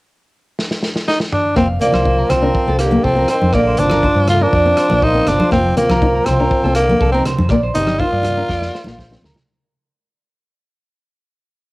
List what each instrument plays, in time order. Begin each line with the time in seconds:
0.59 snare
0.71 snare
0.83 snare
0.96 snare
1.08 tenor saxophone D#4, snare
1.20 snare
1.32 tenor saxophone D4, mid tom
1.56 fingered electric bass F1, trombone F3, nylon-string guitar A#3, tenor saxophone C4, clean electric guitar F5, kick, cross-stick
1.81 trombone F3, tenor saxophone A#3, nylon-string guitar C4, clean electric guitar D5, closed hi-hat, low conga
1.93 fingered electric bass C2, clean electric guitar C5, cross-stick, high conga
2.06 muted nylon-string guitar stroke, kick
2.19 clean electric guitar A#4
2.30 fingered electric bass C2, tenor saxophone C4, clean electric guitar C5, cross-stick, closed hi-hat, low conga
2.34 trombone F3
2.43 nylon-string guitar D4, clean electric guitar A#4
2.55 kick
2.68 fingered electric bass C2, nylon-string guitar C4, clean electric guitar A4
2.79 tenor saxophone A#3, clean electric guitar G4, cross-stick, closed hi-hat
2.83 trombone D3
2.91 nylon-string guitar A#3, high conga
3.04 fingered electric bass C2, trombone F3, tenor saxophone C4, clean electric guitar A4, kick
3.16 nylon-string guitar C4, clean electric guitar A#4
3.28 trombone D#3, tenor saxophone C4, clean electric guitar C5, cross-stick, closed hi-hat
3.42 fingered electric bass F2, high conga
3.53 fingered electric bass A#1, tenor saxophone A#3, nylon-string guitar A#3, clean electric guitar D5, kick, cross-stick
3.57 trombone D3
3.67 clean electric guitar C5
3.77 fingered electric bass G1, nylon-string guitar C4, tenor saxophone D4, closed hi-hat, low conga
3.82 trombone F3
3.90 clean electric guitar A#4, cross-stick, high conga
4.03 nylon-string guitar D#4, clean electric guitar C5, kick
4.15 fingered electric bass G2, muted clean electric guitar stroke
4.28 trombone A3, tenor saxophone F4, cross-stick, closed hi-hat, low conga
4.41 trombone F3, nylon-string guitar D4, tenor saxophone D4, clean electric guitar A#4
4.53 fingered electric bass F2, clean electric guitar D5, kick
4.66 nylon-string guitar C4
4.77 clean electric guitar C5, cross-stick, closed hi-hat
4.90 fingered electric bass A#1, nylon-string guitar A#3, clean electric guitar D5, high conga
5.02 trombone A#3, tenor saxophone D#4, clean electric guitar C5, kick
5.14 nylon-string guitar C4
5.27 fingered electric bass G1, trombone F3, tenor saxophone D4, cross-stick, closed hi-hat, low conga
5.40 clean electric guitar C5, high conga
5.51 fingered electric bass F1, nylon-string guitar A#3, tenor saxophone C4, clean electric guitar F5, kick, cross-stick
5.55 trombone F3
5.77 trombone F3, tenor saxophone A#3, nylon-string guitar C4, muted clean electric guitar stroke, closed hi-hat, low conga
5.89 fingered electric bass C2, clean electric guitar A#4, cross-stick, high conga
6.02 nylon-string guitar D#4, kick
6.15 clean electric guitar A#4
6.26 fingered electric bass C2, trombone F3, tenor saxophone C4, clean electric guitar C5, cross-stick, closed hi-hat, low conga
6.40 nylon-string guitar D4, clean electric guitar A#4
6.51 kick
6.64 fingered electric bass C2, nylon-string guitar C4, clean electric guitar A4
6.75 trombone D3, tenor saxophone A#3, cross-stick, closed hi-hat
6.89 nylon-string guitar A#3, high conga
7.01 fingered electric bass C2, clean electric guitar A4, kick
7.12 tenor saxophone C4, nylon-string guitar C4, clean electric guitar A#4
7.17 trombone D#3
7.25 clean electric guitar C5, cross-stick, closed hi-hat, low conga
7.38 fingered electric bass F2, high conga
7.49 fingered electric bass A#1, nylon-string guitar A#3, clean electric guitar D5, kick, cross-stick
7.63 clean electric guitar C5
7.75 fingered electric bass G1, trombone G3, nylon-string guitar C4, tenor saxophone D#4, closed hi-hat, low conga
7.87 cross-stick, high conga
7.99 trombone A#3, nylon-string guitar D#4, tenor saxophone F4, clean electric guitar C5, kick
8.12 fingered electric bass G2, clean electric guitar D5
8.23 cross-stick, closed hi-hat, high conga, low conga
8.37 nylon-string guitar D4, clean electric guitar A#4
8.49 fingered electric bass F2, clean electric guitar D5, kick, snare
8.62 snare
8.74 clean electric guitar C5, snare
8.84 fingered electric bass A#1, nylon-string guitar A#3, clean electric guitar F5, snare, high conga
8.98 clean electric guitar C5, kick, snare, high conga
9.10 nylon-string guitar C4, snare, high conga
9.22 fingered electric bass D2, clean electric guitar A#4, snare, low conga
9.34 snare, low conga